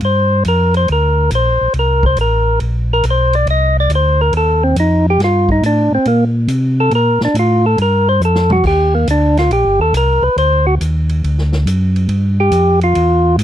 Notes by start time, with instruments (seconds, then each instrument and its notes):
0.01 tonewheel organ G2, ride
0.05 tonewheel organ C5
0.45 tonewheel organ F2 A#4, hi-hat pedal, ride
0.74 tonewheel organ C5, ride
0.88 tonewheel organ D2, ride
0.92 tonewheel organ A#4
1.31 tonewheel organ A#1, hi-hat pedal, ride
1.35 tonewheel organ C5
1.61 tonewheel organ A#1
1.74 tonewheel organ C2, ride
1.79 tonewheel organ A#4
2.03 tonewheel organ C5, kick
2.17 tonewheel organ A1, hi-hat pedal, ride
2.21 tonewheel organ A#4
2.60 tonewheel organ A#1, ride
2.93 tonewheel organ A#4
3.04 tonewheel organ B1, hi-hat pedal, ride
3.10 tonewheel organ C5
3.33 tonewheel organ D5, ride
3.46 tonewheel organ C2 D#5, ride
3.80 tonewheel organ D5
3.89 tonewheel organ D2, hi-hat pedal, ride
3.95 tonewheel organ C5
4.21 tonewheel organ A#4
4.32 tonewheel organ D#2, ride
4.37 tonewheel organ A4
4.64 tonewheel organ C4
4.76 tonewheel organ F2 D#4, hi-hat pedal, ride
5.10 tonewheel organ G4
5.19 tonewheel organ G2, snare, ride
5.24 tonewheel organ F4
5.49 tonewheel organ D#4, kick
5.62 tonewheel organ A2 D4, hi-hat pedal, ride
5.91 tonewheel organ A2 C4
6.05 tonewheel organ A#2 A#3, ride
6.47 tonewheel organ C3, hi-hat pedal, ride
6.80 tonewheel organ A4
6.91 tonewheel organ A#2 A#4, ride
7.21 tonewheel organ A#2 D4, snare
7.34 tonewheel organ A2, hi-hat pedal, ride
7.39 tonewheel organ F4
7.66 tonewheel organ A4
7.78 tonewheel organ G2 A#4, ride
8.09 tonewheel organ C5
8.20 tonewheel organ F2, hi-hat pedal
8.25 tonewheel organ A4
8.35 snare
8.50 tonewheel organ F#4, mid tom
8.63 tonewheel organ D#2 G4, kick, crash
8.95 tonewheel organ A#3
9.07 tonewheel organ D2 D4, hi-hat pedal, ride
9.37 tonewheel organ F4, snare, ride
9.50 tonewheel organ A#1 G4, ride
9.65 tonewheel organ G1
9.79 tonewheel organ D#2 A4
9.93 tonewheel organ C2, hi-hat pedal, ride
9.97 tonewheel organ A#4
10.22 tonewheel organ C2 B4
10.36 tonewheel organ D2 C5, ride
10.67 tonewheel organ F#4
10.80 tonewheel organ D#2, hi-hat pedal, ride
11.09 ride
11.24 tonewheel organ D2, ride
11.38 snare
11.52 snare
11.65 tonewheel organ F#2, hi-hat pedal, ride
11.96 ride
12.08 tonewheel organ G2, ride
12.40 tonewheel organ G4
12.51 tonewheel organ F2, hi-hat pedal, ride
12.81 tonewheel organ F4, ride
12.95 tonewheel organ E2, ride
13.38 tonewheel organ G#2, hi-hat pedal, ride